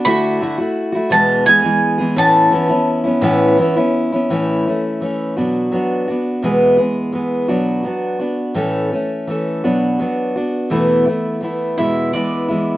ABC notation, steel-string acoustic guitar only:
X:1
M:6/8
L:1/16
Q:3/8=56
K:A
V:1 name="Steel-string acoustic guitar"
[D,A,EF]2 [D,A,EF] [A,EF]2 [A,EF] [E,,B,,E,G,B,]2 [E,G,B,G] [E,G,B,G]2 [E,G,B,G] | [A,,E,B,CE]2 [E,B,CE] [B,CE]2 [B,CE] [A,,E,B,CE]2 [E,B,CE] [B,CE]2 [B,CE] | [A,,E,A,CE]2 [A,CE]2 [E,A,CE]2 [B,,F,B,DF]2 [F,B,DF]2 [B,DF]2 | [E,,B,,E,G,B,G]2 [E,G,B,G]2 [E,G,B,G]2 [B,,F,B,DF]2 [F,B,DF]2 [B,DF]2 |
[A,,E,A,CA]2 [A,CA]2 [E,A,CA]2 [B,,F,B,DF]2 [F,B,DF]2 [B,DF]2 | [E,,B,,E,A,B,E]2 [E,A,B,E]2 [E,A,B,E]2 [E,,B,,E,G,B,E]2 [E,G,B,E]2 [E,G,B,E]2 |]